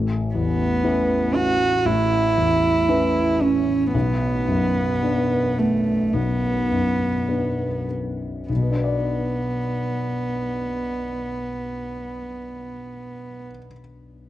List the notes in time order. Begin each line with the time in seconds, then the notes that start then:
Already playing: A1
0.35 E2 B3
0.84 C#4 E4 B4
1.35 C#4 F#4
1.85 A1 E4
2.38 E2
2.89 C#4 E4 B4
3.41 C#4
3.93 B1 B3
4.48 F#2
5.03 B3 D4 B4
5.58 A3 B3
6.13 B1 B3
6.71 F#2
7.29 B3 D4 B4
7.88 B3
8.49 B1 B3
8.56 B2
8.63 B3
8.70 D4
8.77 B4
8.84 D5